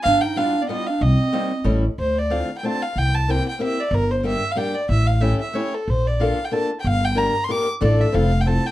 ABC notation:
X:1
M:3/4
L:1/16
Q:"Swing" 1/4=186
K:Cm
V:1 name="Violin"
f2 g2 f3 d e2 f2 | e8 z4 | [K:Dm] c2 d2 f3 g a2 f2 | g2 a2 g2 g2 e2 d2 |
B2 c2 e3 f g2 d2 | e2 f2 e2 e2 ^c2 A2 | c2 d2 f3 g a2 z3/2 g/2 | f2 g2 b3 c' d'2 z2 |
d2 e2 f3 g a2 g2 |]
V:2 name="Clarinet"
D2 E2 D3 =B, B,2 D2 | C8 z4 | [K:Dm] z12 | z12 |
z12 | z12 | z12 | z12 |
z12 |]
V:3 name="Steel-string acoustic guitar"
z4 [G,=B,DF]2 z2 [G,B,DF]2 z2 | z4 [G,B,CE]2 z2 [G,=A,^C=E]2 z2 | [K:Dm] z4 [A,CDF]2 z2 [A,CDF]2 z2 | z4 [B,CEG]2 z2 [B,CEG]2 z2 |
z4 [G,B,DG]2 z2 [G,B,DG]2 z2 | z4 [A,^CEG]2 z2 [A,CEG]2 z2 | z4 [B,DFA]2 z2 [B,DFA]2 z2 | z4 [B,DGB]2 z2 [B,DGB]2 z2 |
[A,DFA]4 [CEFA]2 z2 [CEFA]2 z2 |]
V:4 name="Upright bass" clef=bass
G,,,2 z8 z2 | C,,2 z6 =A,,,4 | [K:Dm] D,,8 z4 | C,,8 z4 |
G,,,8 z4 | A,,,8 z4 | B,,,8 z4 | G,,,8 z4 |
A,,,4 F,,,8 |]